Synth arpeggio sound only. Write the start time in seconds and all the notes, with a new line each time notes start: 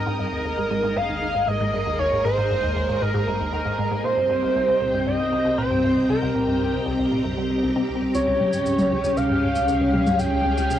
0.06 G#2
0.19 G2
0.32 D#2
0.45 D#2
0.58 G#2
0.70 G#2
0.83 G#2
0.96 G2
1.09 D#2
1.22 D#2
1.35 G#2
1.47 G#2
1.60 G#2
1.73 G2
1.86 D#2
1.99 D#2
2.12 G#2
2.24 G#2
2.37 G#2
2.50 G2
2.63 D#2
2.76 D#2
2.89 G#2
3.01 G#2
3.14 G#2
3.27 G2
3.40 D#2
3.52 D#2
3.65 G#2
3.78 G#2
3.91 G#2
4.04 A#2
4.17 G2
4.30 G2
4.43 C2
4.55 C2
4.68 C2
4.81 A#2
4.94 G2
5.07 G2
5.19 C2
5.32 C2
5.45 C2
5.58 A#2
5.71 G2
5.83 G2
5.96 C2
6.09 C2
6.22 C2
6.35 A#2
6.48 G2
6.61 G2
6.73 C2
6.86 C2
6.99 C2
7.12 A#2
7.24 G2
7.37 G3
7.50 C3
7.63 C2
7.76 C3
7.89 C2
8.02 C2
8.14 C#2
8.27 C#2
8.40 C3
8.53 G#2
8.66 G#2
8.79 C#2
8.91 C#2
9.04 C#2
9.17 C3
9.30 G#2
9.43 G#2
9.55 C#2
9.68 C#2
9.81 C#2
9.94 C3
10.07 G#2
10.19 G#2
10.32 C#2
10.45 C#2
10.58 C#2
10.71 C3